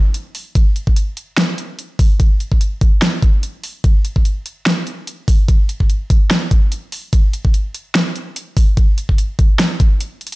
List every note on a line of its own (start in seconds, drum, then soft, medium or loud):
0.14 closed hi-hat medium
0.35 open hi-hat medium
0.55 kick loud
0.55 closed hi-hat medium
0.55 ride soft
0.76 closed hi-hat medium
0.87 kick medium
0.96 closed hi-hat medium
1.17 closed hi-hat medium
1.38 snare loud
1.38 closed hi-hat medium
1.38 ride soft
1.58 closed hi-hat medium
1.79 closed hi-hat medium
1.99 kick loud
1.99 open hi-hat medium
2.20 kick loud
2.20 closed hi-hat medium
2.20 ride soft
2.40 closed hi-hat medium
2.52 kick medium
2.61 closed hi-hat medium
2.81 kick loud
2.81 closed hi-hat medium
3.02 snare loud
3.02 closed hi-hat medium
3.02 ride soft
3.22 kick loud
3.22 closed hi-hat medium
3.43 closed hi-hat medium
3.64 open hi-hat medium
3.84 kick loud
3.84 closed hi-hat medium
3.84 ride soft
4.05 closed hi-hat medium
4.16 kick medium
4.25 closed hi-hat medium
4.46 closed hi-hat medium
4.66 snare loud
4.66 closed hi-hat medium
4.66 ride soft
4.87 closed hi-hat medium
5.07 closed hi-hat medium
5.28 kick loud
5.28 open hi-hat medium
5.48 kick loud
5.48 closed hi-hat medium
5.48 ride soft
5.69 closed hi-hat medium
5.80 kick medium
5.90 closed hi-hat medium
6.10 kick loud
6.10 closed hi-hat medium
6.31 snare loud
6.31 closed hi-hat medium
6.31 ride soft
6.51 kick loud
6.51 closed hi-hat medium
6.72 closed hi-hat medium
6.92 open hi-hat loud
7.13 kick loud
7.13 closed hi-hat medium
7.13 ride soft
7.33 closed hi-hat medium
7.45 kick medium
7.54 closed hi-hat medium
7.75 closed hi-hat medium
7.95 snare loud
7.95 closed hi-hat medium
7.95 ride soft
8.16 closed hi-hat medium
8.36 closed hi-hat medium
8.57 kick loud
8.57 open hi-hat loud
8.77 kick loud
8.77 closed hi-hat medium
8.77 ride soft
8.98 closed hi-hat medium
9.09 kick medium
9.18 closed hi-hat medium
9.39 kick loud
9.39 closed hi-hat medium
9.59 snare loud
9.59 closed hi-hat medium
9.59 ride soft
9.80 kick loud
9.80 closed hi-hat medium
10.01 closed hi-hat medium
10.21 closed hi-hat medium
10.27 closed hi-hat medium
10.32 closed hi-hat medium